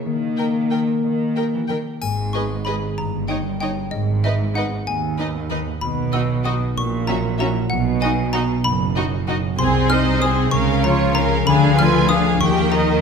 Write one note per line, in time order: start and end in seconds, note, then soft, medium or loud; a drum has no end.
0.00 1.68 A#3 soft
0.00 0.70 A#4 soft
0.06 2.04 D#3 soft
0.06 0.88 D#3 soft
0.06 1.66 A#3 medium
0.37 2.65 D#4 soft
0.37 0.47 A#4 soft
0.37 0.45 G5 soft
0.70 0.79 A#4 soft
0.70 2.04 A#4 soft
0.70 0.80 A#4 soft
0.70 0.78 G5 soft
1.04 1.49 D#3 soft
1.04 4.94 D#5 soft
1.36 2.04 G4 soft
1.36 1.45 A#4 soft
1.36 1.44 G5 soft
1.53 1.60 E3 soft
1.68 1.78 D#3 soft
1.68 2.04 A#3 soft
1.68 1.77 A#4 soft
1.68 1.76 G5 soft
2.02 2.82 G#1 medium
2.02 2.81 G#2 soft
2.02 3.00 G#2 soft
2.02 2.31 G#5 medium
2.02 triangle soft
2.33 3.00 B3 soft
2.33 2.42 G#4 soft
2.33 2.43 B4 soft
2.33 2.43 D#5 soft
2.33 2.63 C#6 medium
2.65 3.59 D#4 soft
2.65 2.74 G#4 soft
2.65 3.01 G#4 soft
2.65 2.74 B4 soft
2.65 2.74 D#5 soft
2.65 2.95 B5 soft
2.97 3.77 G1 medium
2.97 3.77 G2 soft
2.97 3.95 G2 soft
2.97 3.27 A#5 medium
3.28 3.95 A#3 soft
3.28 3.37 D#4 soft
3.28 3.38 C#5 soft
3.28 3.36 D#5 soft
3.28 3.58 G5 medium
3.60 4.23 D#4 soft
3.60 3.69 D#4 soft
3.60 3.95 C#5 soft
3.60 3.69 C#5 soft
3.60 3.69 D#5 soft
3.60 3.90 G5 medium
3.91 4.71 G#1 medium
3.91 4.71 G#2 medium
3.91 5.84 G#2 soft
3.91 4.21 D#5 medium
4.24 6.44 D#4 soft
4.24 4.32 D#4 soft
4.24 4.33 B4 soft
4.24 4.32 D#5 soft
4.24 4.53 E5 medium
4.55 5.18 B3 soft
4.55 4.63 D#4 soft
4.55 4.65 B4 soft
4.55 4.64 D#5 soft
4.55 4.85 F#5 medium
4.87 5.65 D#2 soft
4.87 5.66 D#2 soft
4.87 5.41 A#3 soft
4.87 5.78 G#5 medium
5.18 6.13 B3 soft
5.18 5.26 D#4 soft
5.18 5.26 B4 soft
5.18 5.28 D#5 soft
5.49 5.84 D#3 soft
5.49 5.58 D#4 soft
5.49 5.58 B4 soft
5.49 5.59 D#5 soft
5.81 6.61 B1 medium
5.81 6.79 B2 soft
5.81 6.61 B2 medium
5.81 6.11 B5 medium
6.12 6.79 B3 soft
6.12 6.22 D#4 soft
6.12 6.21 F#4 soft
6.12 6.20 D#5 soft
6.12 6.43 E6 medium
6.44 6.79 D#4 soft
6.44 6.54 D#4 soft
6.44 6.53 F#4 soft
6.44 7.38 F#4 soft
6.44 6.52 D#5 soft
6.44 6.75 D#6 medium
6.76 7.55 A#1 medium
6.76 7.73 A#2 soft
6.76 7.55 A#2 medium
6.76 7.06 C#6 medium
7.07 9.27 F#3 soft
7.07 7.16 C#4 soft
7.07 7.17 F#4 soft
7.07 7.16 E5 soft
7.07 7.37 A#5 medium
7.39 7.48 C#4 soft
7.39 7.73 E4 soft
7.39 9.61 F#4 soft
7.39 7.48 F#4 soft
7.39 7.47 E5 soft
7.39 7.69 A#5 medium
7.70 8.49 B1 medium
7.70 9.61 B2 medium
7.70 8.50 B2 medium
7.70 8.00 F#5 medium
8.01 10.20 D#4 soft
8.01 8.11 D#4 soft
8.01 8.11 F#4 soft
8.01 8.09 D#5 medium
8.01 8.31 G#5 medium
8.33 8.95 B3 soft
8.33 8.43 D#4 soft
8.33 8.42 F#4 soft
8.33 8.41 D#5 soft
8.33 8.62 A#5 medium
8.64 9.43 F#1 medium
8.64 9.43 F#2 medium
8.64 9.18 A#3 soft
8.64 9.55 B5 medium
8.96 9.62 B3 soft
8.96 9.04 D#4 soft
8.96 9.05 F#4 soft
8.96 9.04 D#5 soft
9.28 9.62 F#3 soft
9.28 9.36 D#4 soft
9.28 9.36 F#4 soft
9.28 9.36 D#5 soft
9.58 10.42 C2 medium
9.58 10.42 C3 medium
9.58 10.55 C3 medium
9.58 9.88 C4 medium
9.58 9.88 G#4 medium
9.58 9.88 C5 medium
9.58 9.88 C6 medium
9.90 10.55 G#3 soft
9.90 10.22 D#4 medium
9.90 10.22 C5 medium
9.90 10.22 D#5 medium
9.90 10.19 F6 medium
10.21 10.53 C4 medium
10.21 10.56 D#4 soft
10.21 10.53 G#4 medium
10.21 10.56 G#4 soft
10.21 10.53 C5 medium
10.21 10.51 D#6 medium
10.51 11.36 C#2 medium
10.51 11.49 C#3 medium
10.51 11.36 C#3 medium
10.51 10.82 C#4 medium
10.51 10.82 A#4 medium
10.51 10.82 F5 medium
10.51 10.81 C#6 medium
10.84 11.78 F3 soft
10.84 11.16 F4 soft
10.84 11.16 C#5 medium
10.84 11.13 A#5 medium
11.15 11.47 C#4 soft
11.15 12.08 F4 soft
11.15 11.49 A#4 soft
11.15 11.47 A#4 soft
11.15 11.46 F5 medium
11.15 11.44 A#5 medium
11.47 12.30 D2 medium
11.47 12.43 D3 medium
11.47 12.30 D3 medium
11.47 11.76 D4 medium
11.47 11.76 G#4 medium
11.47 11.76 F5 medium
11.47 11.76 B5 medium
11.77 12.44 F3 medium
11.77 12.09 F4 medium
11.77 12.09 B4 medium
11.77 12.09 G#5 medium
11.77 12.08 F6 medium
12.08 12.41 D4 soft
12.08 12.43 F4 soft
12.08 12.41 G#4 soft
12.08 12.44 G#4 soft
12.08 12.40 F5 medium
12.08 12.38 D#6 medium
12.41 13.01 D#2 medium
12.41 13.01 D#3 medium
12.41 12.70 A#3 medium
12.41 12.71 G4 soft
12.41 12.71 G5 medium
12.41 12.70 C#6 medium
12.72 13.01 D#4 soft
12.72 13.01 A#4 medium
12.72 13.01 D#5 soft
12.72 13.01 A#5 medium